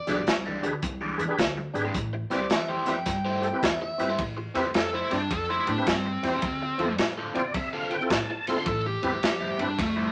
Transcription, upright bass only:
0.07 B1
0.27 C2
0.63 D2
0.83 C2
1.19 E2
1.39 D2
1.74 G#1
1.95 A1
2.30 C2
2.50 E2
2.87 F2
3.07 G2
3.63 E2
4.00 G2
4.19 A1
4.55 E2
4.74 F2
5.12 G2
5.31 F2
5.68 A2
5.87 G2
6.23 E2
6.43 D2
6.79 F2
6.99 A2
7.36 B2
7.54 C3
8.10 A2
8.47 C3
8.66 A1
9.03 E2
9.22 F2
9.59 G2
9.79 F2

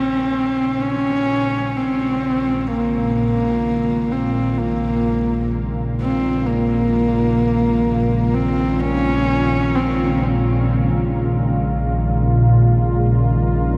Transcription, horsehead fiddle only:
Already playing: C4
0.81 C#4
1.76 C4
2.72 A#3
4.12 C4
4.58 A#3
6.02 C4
6.47 A#3
8.34 C4
8.81 C#4
9.75 C4

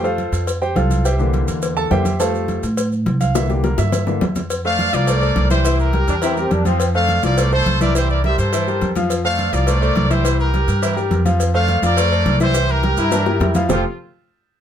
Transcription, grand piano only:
0.04 F4 A4 C5 F5
0.62 G4 C5 G5
0.76 F4 A4 C5 F5
1.05 G4 C5 E5 G5
1.19 D3 E3 A#3
1.77 A4 A5
1.90 D3 E3 A#3 G4 C5 E5 G5
2.19 F3 G3 A3 A4 C5 F5 A5
3.21 F5
3.35 D3 E3 A#3 E5
3.50 G4
3.64 A#4
3.78 E5
4.07 D3 E3 A#3
4.65 A3 A4 C5
4.93 F3 F4 F5
5.07 A3 A4 C5
5.22 A3 A4 C5
5.51 E3 E4 E5
5.65 E3 E4 E5
5.94 G3 G4 A#4
6.22 E3 E4 E5
6.37 G3 G4 A#4
6.65 F3 F4 F5
6.95 A3 A4 C5
7.23 F3 F4 F5
7.38 A3 A4 C5
7.52 A3 A4 C5
7.81 E3 E4 E5
7.95 E3 E4 E5
8.24 G3 G4 A#4
8.53 E3 E4 E5
8.67 G3 G4 A#4
8.96 F3 F4 F5
9.24 A3 A4 C5
9.53 F3 F4 F5
9.67 A3 A4 C5
9.81 A3 A4 C5
10.10 E3 E4 E5
10.24 E3 E4 E5
10.53 G3 G4 A#4
10.82 E3 E4 E5
10.97 G3 G4 A#4
11.25 F3 F4 F5
11.54 A3 A4 C5
11.83 F3 F4 F5
11.97 A3 A4 C5
12.12 A3 A4 C5
12.40 E3 E4 E5
12.54 E3 E4 E5
12.83 G3 G4 A#4
13.12 E3 E4 E5
13.26 G3 G4 A#4
13.55 F3 F4 F5
13.69 F3 C4 F4 G4 A4 C5

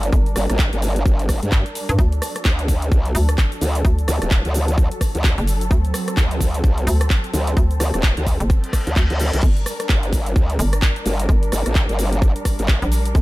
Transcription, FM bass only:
0.13 G1
1.89 G2
1.99 D2
3.15 D2
3.85 D2
5.38 F#1
5.71 D2
6.87 D2
7.57 D2
8.40 F#1
8.96 D2
9.43 G1
10.59 G1
11.29 G1
12.82 A#1
13.15 G1

